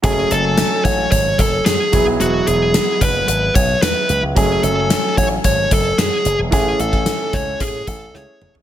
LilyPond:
<<
  \new Staff \with { instrumentName = "Lead electric guitar" } { \time 4/4 \key fis \minor \tempo 4 = 111 gis'8 a'4 cis''8 cis''8 a'8 gis'8. r16 | fis'8 gis'4 b'8 b'8 cis''8 b'8. r16 | gis'8 a'4 cis''8 cis''8 a'8 gis'8. r16 | gis'8 a'4 cis''8 gis'8 a'8 cis''8. r16 | }
  \new Staff \with { instrumentName = "Grand piano" } { \time 4/4 \key fis \minor <fis a cis' gis''>2.~ <fis a cis' gis''>8 <fis b e' gis'>8~ | <fis b e' gis'>2.~ <fis b e' gis'>8 r8 | <fis a cis' gis''>1 | <e a cis' gis''>2. <e a cis' gis'>4 | }
  \new Staff \with { instrumentName = "Slap bass" } { \clef bass \time 4/4 \key fis \minor fis,,8 fis,,8. r16 a,,8 gis,,8 fis,,8 fis,16 r16 e,,16 b,,16 | e,,8 e,,8. r16 fis,,8 gis,,8 b,,8 e,16 r16 cis,16 cis,16 | fis,,8 fis,,8. r16 a,,8 gis,,8 fis,,8 fis,16 r16 fis,,16 e,,16 | a,,8 a,,8. r16 cis,8 a,8 a,,8 cis,16 r16 e,,8 | }
  \new DrumStaff \with { instrumentName = "Drums" } \drummode { \time 4/4 <hh bd>8 hh8 <hh sn>8 <hh bd>8 <hh bd>8 <hh bd>8 <hh sn>8 <hh bd>8 | hh8 hh8 <hh sn>8 <hh bd>8 hh8 <hh bd>8 <hh sn>8 hh8 | <hh bd>8 hh8 <hh sn>8 <hh bd>8 <hh bd>8 <hh bd>8 <hh sn>8 hh8 | <hh bd>8 hh16 bd16 <hh sn>8 <hh bd>8 <hh bd>8 <hh bd>8 sn8 toml16 tomfh16 | }
>>